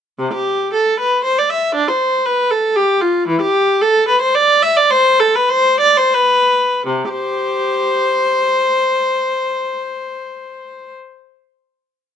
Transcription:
0, 0, Header, 1, 2, 480
1, 0, Start_track
1, 0, Key_signature, 0, "major"
1, 0, Tempo, 554529
1, 172, Time_signature, 3, 2, 24, 8
1, 644, Tempo, 511509
1, 3524, Tempo, 559180
1, 4964, Tempo, 638298
1, 5444, Tempo, 711744
1, 9505, End_track
2, 0, Start_track
2, 0, Title_t, "Viola"
2, 0, Program_c, 0, 41
2, 166, Note_on_c, 0, 48, 78
2, 290, Note_off_c, 0, 48, 0
2, 290, Note_on_c, 0, 67, 76
2, 634, Note_off_c, 0, 67, 0
2, 634, Note_on_c, 0, 69, 70
2, 873, Note_off_c, 0, 69, 0
2, 883, Note_on_c, 0, 71, 73
2, 1111, Note_on_c, 0, 72, 81
2, 1114, Note_off_c, 0, 71, 0
2, 1231, Note_off_c, 0, 72, 0
2, 1245, Note_on_c, 0, 74, 68
2, 1354, Note_on_c, 0, 76, 78
2, 1360, Note_off_c, 0, 74, 0
2, 1587, Note_on_c, 0, 62, 88
2, 1592, Note_off_c, 0, 76, 0
2, 1707, Note_off_c, 0, 62, 0
2, 1711, Note_on_c, 0, 72, 79
2, 2068, Note_on_c, 0, 71, 82
2, 2071, Note_off_c, 0, 72, 0
2, 2299, Note_on_c, 0, 69, 75
2, 2306, Note_off_c, 0, 71, 0
2, 2536, Note_on_c, 0, 67, 85
2, 2537, Note_off_c, 0, 69, 0
2, 2772, Note_on_c, 0, 65, 74
2, 2776, Note_off_c, 0, 67, 0
2, 3022, Note_on_c, 0, 52, 83
2, 3024, Note_off_c, 0, 65, 0
2, 3148, Note_on_c, 0, 67, 92
2, 3149, Note_off_c, 0, 52, 0
2, 3513, Note_off_c, 0, 67, 0
2, 3526, Note_on_c, 0, 69, 92
2, 3751, Note_off_c, 0, 69, 0
2, 3755, Note_on_c, 0, 71, 90
2, 3866, Note_off_c, 0, 71, 0
2, 3868, Note_on_c, 0, 72, 87
2, 3981, Note_off_c, 0, 72, 0
2, 3984, Note_on_c, 0, 74, 102
2, 4221, Note_off_c, 0, 74, 0
2, 4222, Note_on_c, 0, 76, 95
2, 4342, Note_off_c, 0, 76, 0
2, 4344, Note_on_c, 0, 74, 95
2, 4463, Note_on_c, 0, 72, 100
2, 4465, Note_off_c, 0, 74, 0
2, 4710, Note_off_c, 0, 72, 0
2, 4711, Note_on_c, 0, 69, 89
2, 4836, Note_off_c, 0, 69, 0
2, 4848, Note_on_c, 0, 71, 86
2, 4967, Note_on_c, 0, 72, 102
2, 4969, Note_off_c, 0, 71, 0
2, 5197, Note_off_c, 0, 72, 0
2, 5199, Note_on_c, 0, 74, 95
2, 5316, Note_off_c, 0, 74, 0
2, 5324, Note_on_c, 0, 72, 93
2, 5446, Note_off_c, 0, 72, 0
2, 5451, Note_on_c, 0, 71, 93
2, 5936, Note_off_c, 0, 71, 0
2, 5941, Note_on_c, 0, 48, 73
2, 6089, Note_off_c, 0, 48, 0
2, 6094, Note_on_c, 0, 67, 67
2, 6094, Note_on_c, 0, 72, 84
2, 7022, Note_off_c, 0, 67, 0
2, 8672, Note_off_c, 0, 72, 0
2, 9505, End_track
0, 0, End_of_file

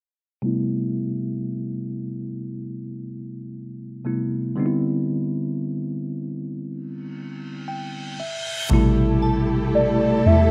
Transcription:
0, 0, Header, 1, 7, 480
1, 0, Start_track
1, 0, Key_signature, 0, "minor"
1, 0, Tempo, 1034483
1, 200, Time_signature, 4, 2, 24, 8
1, 4876, End_track
2, 0, Start_track
2, 0, Title_t, "Synth bell"
2, 0, Program_c, 0, 98
2, 4279, Note_on_c, 0, 81, 54
2, 4876, Note_off_c, 0, 81, 0
2, 4876, End_track
3, 0, Start_track
3, 0, Title_t, "Soft synth lead"
3, 0, Program_c, 1, 80
3, 4523, Note_on_c, 1, 74, 102
3, 4761, Note_on_c, 1, 76, 103
3, 4768, Note_off_c, 1, 74, 0
3, 4876, Note_off_c, 1, 76, 0
3, 4876, End_track
4, 0, Start_track
4, 0, Title_t, "String section"
4, 0, Program_c, 2, 48
4, 4040, Note_on_c, 2, 57, 70
4, 4040, Note_on_c, 2, 64, 69
4, 4040, Note_on_c, 2, 69, 82
4, 4041, Note_on_c, 2, 67, 68
4, 4876, Note_off_c, 2, 57, 0
4, 4876, Note_off_c, 2, 64, 0
4, 4876, Note_off_c, 2, 67, 0
4, 4876, Note_off_c, 2, 69, 0
4, 4876, End_track
5, 0, Start_track
5, 0, Title_t, "Tine electric piano"
5, 0, Program_c, 3, 4
5, 195, Note_on_c, 3, 48, 70
5, 199, Note_on_c, 3, 55, 64
5, 204, Note_on_c, 3, 57, 59
5, 209, Note_on_c, 3, 59, 65
5, 213, Note_on_c, 3, 64, 78
5, 279, Control_c, 3, 64, 127
5, 1859, Note_off_c, 3, 48, 0
5, 1861, Note_off_c, 3, 55, 0
5, 1863, Note_off_c, 3, 57, 0
5, 1866, Note_off_c, 3, 59, 0
5, 1868, Note_off_c, 3, 64, 0
5, 1878, Note_on_c, 3, 48, 54
5, 1881, Note_on_c, 3, 55, 48
5, 1883, Note_on_c, 3, 57, 46
5, 1885, Note_on_c, 3, 59, 49
5, 1887, Note_on_c, 3, 64, 59
5, 2113, Note_off_c, 3, 55, 0
5, 2114, Note_on_c, 3, 50, 72
5, 2117, Note_off_c, 3, 59, 0
5, 2119, Note_off_c, 3, 48, 0
5, 2119, Note_on_c, 3, 55, 64
5, 2121, Note_off_c, 3, 57, 0
5, 2123, Note_off_c, 3, 64, 0
5, 2123, Note_on_c, 3, 59, 62
5, 2125, Control_c, 3, 64, 0
5, 2128, Note_on_c, 3, 60, 63
5, 2132, Note_on_c, 3, 63, 62
5, 2159, Note_off_c, 3, 63, 0
5, 2162, Note_on_c, 3, 64, 77
5, 2194, Control_c, 3, 64, 127
5, 3563, Note_on_c, 3, 79, 67
5, 3778, Note_off_c, 3, 50, 0
5, 3781, Note_off_c, 3, 55, 0
5, 3783, Note_off_c, 3, 59, 0
5, 3785, Note_off_c, 3, 60, 0
5, 3785, Note_off_c, 3, 79, 0
5, 3802, Note_off_c, 3, 64, 0
5, 3803, Note_on_c, 3, 76, 66
5, 3807, Control_c, 3, 64, 0
5, 3879, Control_c, 3, 64, 127
5, 4025, Note_off_c, 3, 76, 0
5, 4034, Note_on_c, 3, 48, 82
5, 4039, Note_on_c, 3, 55, 77
5, 4043, Note_on_c, 3, 57, 72
5, 4046, Control_c, 3, 64, 0
5, 4048, Note_on_c, 3, 47, 75
5, 4052, Note_on_c, 3, 64, 91
5, 4116, Control_c, 3, 64, 127
5, 4876, Note_off_c, 3, 47, 0
5, 4876, Note_off_c, 3, 48, 0
5, 4876, Note_off_c, 3, 55, 0
5, 4876, Note_off_c, 3, 57, 0
5, 4876, Note_off_c, 3, 64, 0
5, 4876, End_track
6, 0, Start_track
6, 0, Title_t, "808-style bass"
6, 0, Program_c, 4, 38
6, 4041, Note_on_c, 4, 33, 109
6, 4742, Note_off_c, 4, 33, 0
6, 4761, Note_on_c, 4, 40, 99
6, 4876, Note_off_c, 4, 40, 0
6, 4876, End_track
7, 0, Start_track
7, 0, Title_t, "Reverse cymbal"
7, 0, Program_c, 5, 119
7, 3079, Note_on_c, 5, 60, 73
7, 4039, Note_off_c, 5, 60, 0
7, 4876, End_track
0, 0, End_of_file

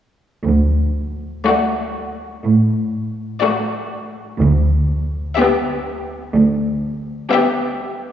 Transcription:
0, 0, Header, 1, 6, 480
1, 0, Start_track
1, 0, Key_signature, 2, "major"
1, 0, Tempo, 1003344
1, 218, Time_signature, 4, 2, 24, 8
1, 1172, Tempo, 974026
1, 3572, Tempo, 938967
1, 3982, End_track
2, 0, Start_track
2, 0, Title_t, "Violin section"
2, 0, Program_c, 0, 48
2, 699, Note_on_c, 0, 74, 27
2, 1057, Note_off_c, 0, 74, 0
2, 1647, Note_on_c, 0, 74, 30
2, 2015, Note_off_c, 0, 74, 0
2, 2612, Note_on_c, 0, 76, 28
2, 2978, Note_off_c, 0, 76, 0
2, 3573, Note_on_c, 0, 76, 36
2, 3937, Note_off_c, 0, 76, 0
2, 3982, End_track
3, 0, Start_track
3, 0, Title_t, "Violin section"
3, 0, Program_c, 1, 48
3, 698, Note_on_c, 1, 66, 26
3, 1057, Note_off_c, 1, 66, 0
3, 1651, Note_on_c, 1, 66, 30
3, 2016, Note_off_c, 1, 66, 0
3, 2622, Note_on_c, 1, 67, 32
3, 2983, Note_off_c, 1, 67, 0
3, 3566, Note_on_c, 1, 67, 33
3, 3933, Note_off_c, 1, 67, 0
3, 3982, End_track
4, 0, Start_track
4, 0, Title_t, "Viola section"
4, 0, Program_c, 2, 48
4, 702, Note_on_c, 2, 57, 28
4, 1059, Note_off_c, 2, 57, 0
4, 1661, Note_on_c, 2, 57, 29
4, 2022, Note_off_c, 2, 57, 0
4, 2619, Note_on_c, 2, 59, 32
4, 2982, Note_off_c, 2, 59, 0
4, 3574, Note_on_c, 2, 59, 29
4, 3937, Note_off_c, 2, 59, 0
4, 3982, End_track
5, 0, Start_track
5, 0, Title_t, "Cello section"
5, 0, Program_c, 3, 48
5, 215, Note_on_c, 3, 38, 33
5, 610, Note_off_c, 3, 38, 0
5, 1170, Note_on_c, 3, 45, 35
5, 1562, Note_off_c, 3, 45, 0
5, 2133, Note_on_c, 3, 38, 33
5, 2523, Note_off_c, 3, 38, 0
5, 3092, Note_on_c, 3, 38, 40
5, 3481, Note_off_c, 3, 38, 0
5, 3982, End_track
6, 0, Start_track
6, 0, Title_t, "Double bass section"
6, 0, Program_c, 4, 48
6, 217, Note_on_c, 4, 38, 29
6, 612, Note_off_c, 4, 38, 0
6, 2129, Note_on_c, 4, 38, 37
6, 2521, Note_off_c, 4, 38, 0
6, 3982, End_track
0, 0, End_of_file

